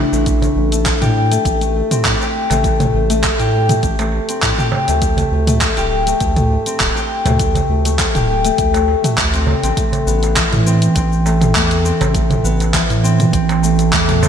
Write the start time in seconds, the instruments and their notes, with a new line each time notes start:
Already playing: harp A3 C4 D4 E4 G4
0.12 analog synth bass A1, harp A3, darbuka ka, shaker
0.26 kick, closed hi-hat, shaker
0.42 harp A3, closed hi-hat, darbuka dum, shaker
0.56 analog synth bass A1
0.72 harp A3, closed hi-hat, shaker
0.86 kick, clap, closed hi-hat, shaker
1.01 analog synth bass A2, harp G4, closed hi-hat, mid tom, shaker
1.31 harp A3, closed hi-hat, shaker
1.45 analog synth bass A1, kick, closed hi-hat, shaker
1.61 harp A3, closed hi-hat, shaker
1.91 harp C4, closed hi-hat, mid tom, shaker
2.05 analog synth bass A2, kick, clap, closed hi-hat, shaker
2.21 harp G4, darbuka ka, darbuka tek, shaker
2.50 analog synth bass A1, harp A3, closed hi-hat, darbuka ka, darbuka tek, darbuka dum, shaker
2.64 kick, closed hi-hat, shaker
2.80 harp A3, closed hi-hat, mid tom, darbuka dum, shaker
2.94 analog synth bass A1
3.10 harp A3, closed hi-hat, darbuka ka, shaker
3.23 kick, clap, closed hi-hat, darbuka tek, shaker
3.39 analog synth bass A2, harp G4, closed hi-hat, shaker
3.69 harp A3, closed hi-hat, mid tom, shaker
3.83 analog synth bass A1, kick, closed hi-hat, shaker
3.99 harp A3, closed hi-hat, darbuka tek, shaker
4.12 darbuka ka
4.29 harp C4, closed hi-hat, shaker
4.42 analog synth bass A2, kick, clap, closed hi-hat, shaker
4.58 harp G4, mid tom, shaker
4.72 darbuka tek, darbuka dum
4.88 analog synth bass D2, harp A3, closed hi-hat, darbuka ka, shaker
5.02 kick, closed hi-hat, shaker
5.17 harp A3, closed hi-hat, darbuka dum, shaker
5.32 analog synth bass D2
5.47 harp A3, closed hi-hat, mid tom, shaker
5.61 kick, clap, closed hi-hat, shaker
5.77 analog synth bass D1, harp G4, closed hi-hat, shaker
6.07 harp A3, closed hi-hat, shaker
6.20 analog synth bass D2, kick, closed hi-hat, shaker
6.36 harp A3, closed hi-hat, mid tom, shaker
6.66 harp C4, closed hi-hat, shaker
6.80 analog synth bass D1, kick, clap, closed hi-hat, shaker
6.96 harp G4, darbuka ka, darbuka tek, shaker
7.25 analog synth bass D2, harp A3, closed hi-hat, mid tom, darbuka ka, darbuka tek, darbuka dum, shaker
7.39 kick, closed hi-hat, shaker
7.55 harp A3, closed hi-hat, darbuka dum, shaker
7.69 analog synth bass D2
7.85 harp A3, closed hi-hat, darbuka ka, shaker
7.99 kick, clap, closed hi-hat, darbuka tek, shaker
8.15 analog synth bass D1, harp G4, closed hi-hat, mid tom, shaker
8.45 harp A3, closed hi-hat, shaker
8.58 analog synth bass D2, kick, closed hi-hat, shaker
8.74 harp A3, closed hi-hat, darbuka tek, shaker
8.88 darbuka ka
9.04 harp A3, closed hi-hat, mid tom, shaker
9.18 analog synth bass D2, kick, clap, closed hi-hat, shaker
9.34 harp C4, closed hi-hat, shaker
9.47 darbuka tek, darbuka dum
9.63 analog synth bass A1, harp C4, closed hi-hat, darbuka ka, shaker
9.77 harp A3, kick, closed hi-hat, shaker
9.93 closed hi-hat, darbuka dum, shaker
10.07 analog synth bass A1, harp B3, shaker
10.23 closed hi-hat, darbuka ka, shaker
10.36 harp E3, kick, clap, closed hi-hat, shaker
10.53 analog synth bass A2, closed hi-hat, mid tom, shaker
10.66 harp C4, shaker
10.82 closed hi-hat, shaker
10.95 analog synth bass A1, harp C4, kick, closed hi-hat, darbuka ka, shaker
11.12 shaker
11.26 harp A3, darbuka tek, shaker
11.41 closed hi-hat, mid tom, darbuka ka, shaker
11.55 analog synth bass E2, harp A3, kick, clap, closed hi-hat, shaker
11.71 closed hi-hat, shaker
11.85 harp C4, shaker
12.01 analog synth bass A1, closed hi-hat, darbuka ka, darbuka tek, darbuka dum, shaker
12.14 harp A3, kick, closed hi-hat, shaker
12.30 closed hi-hat, mid tom, darbuka dum, shaker
12.44 analog synth bass A1, harp B3, shaker
12.60 closed hi-hat, darbuka ka, shaker
12.74 harp E3, kick, clap, closed hi-hat, darbuka tek, shaker
12.90 analog synth bass A2, closed hi-hat, shaker
13.04 harp C4, shaker
13.20 closed hi-hat, mid tom, shaker
13.33 analog synth bass A1, harp C4, kick, closed hi-hat, shaker
13.49 closed hi-hat, darbuka tek, shaker
13.63 harp A3, darbuka ka, shaker
13.79 closed hi-hat, darbuka ka, shaker
13.93 analog synth bass E2, harp A3, kick, clap, closed hi-hat, shaker
14.08 closed hi-hat, mid tom, darbuka ka, shaker
14.23 harp C4, darbuka tek, darbuka dum, shaker